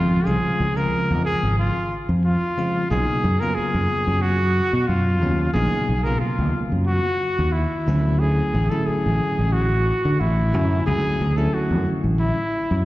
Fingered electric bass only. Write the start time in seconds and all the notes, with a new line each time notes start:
Already playing: F2
0.27 C2
0.60 C#2
0.94 muted fingered electric bass stroke
1.10 F2
1.43 G#1
2.09 F2
2.91 B1
3.24 F#2
3.57 muted fingered electric bass stroke
3.74 F#2
4.07 F#2
4.73 B2
4.89 F#2
5.22 D#2
5.55 A#1
5.89 B1
6.21 muted fingered electric bass stroke
6.39 D#2
6.72 F#2
7.39 D#2
7.88 D2
8.54 A1
8.88 muted fingered electric bass stroke
9.06 A1
9.39 A1
10.05 D3
10.21 A1
10.54 F#2
10.87 C#2
11.05 muted fingered electric bass stroke
11.20 D2
11.54 muted fingered electric bass stroke
11.71 F#2
12.04 A1
12.71 F#2